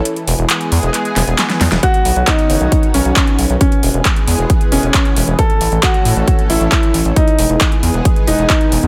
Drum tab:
HH |xxoxxxoxxxoxxxox|xxoxxxoxxxoxxxox|xxoxxxoxxxoxxxox|xxoxxxoxxxoxxxox|
CP |----x---x---x---|----x-------x---|----x-------x---|----x-------x---|
SD |----------o-oooo|----------------|----------------|----------------|
BD |----------------|o---o---o---o---|o---o---o---o---|o---o---o---o---|

HH |xxoxxxoxxxoxxxox|
CP |----x-------x---|
SD |----------------|
BD |o---o---o---o---|